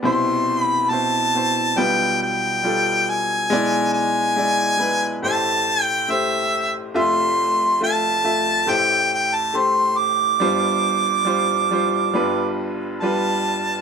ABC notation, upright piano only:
X:1
M:4/4
L:1/16
Q:1/4=69
K:C
V:1 name="Upright piano"
[B,,Ec]3 z [B,,Ec]2 [B,,Ec]2 [G,FB]3 z [G,FA]3 z | [^G,Ed]3 z [G,Ed]2 [G,EB]2 [A,=Gc]3 z [A,Gc]3 z | [A,Fe]3 z [A,Fe]2 [A,Fe]2 [A,Gc]3 z [A,Gc]3 z | [G,Fc]3 z [G,Fc]2 [G,Fc]2 [G,FB]3 z [G,FB]3 z |]
V:2 name="Upright piano" clef=bass
[C,,C,]8 [B,,,B,,]8 | [B,,,B,,]8 [A,,,A,,]8 | [F,,,F,,]8 [A,,,A,,]8 | [G,,,G,,]8 [G,,,G,,]8 |]